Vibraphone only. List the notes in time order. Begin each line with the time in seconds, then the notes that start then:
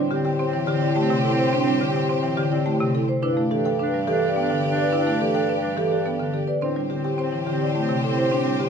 0.11 G4
0.25 G4
0.67 G4
0.82 E4
0.96 G4
1.24 E4
1.39 C5
1.53 D4
1.81 G4
1.96 G4
2.38 G4
2.52 E4
2.66 G4
2.94 E4
3.08 C5
3.23 E4
3.51 A4
3.65 A4
4.08 A4
4.22 G4
4.36 A4
4.64 G4
4.79 D5
4.93 E4
5.21 A4
5.35 A4
5.78 A4
5.92 G4
6.06 A4
6.34 G4
6.48 D5
6.62 D4
6.90 G4
7.05 G4
7.47 G4
7.61 E4
7.75 G4
8.04 E4
8.18 C5
8.32 D4
8.60 G4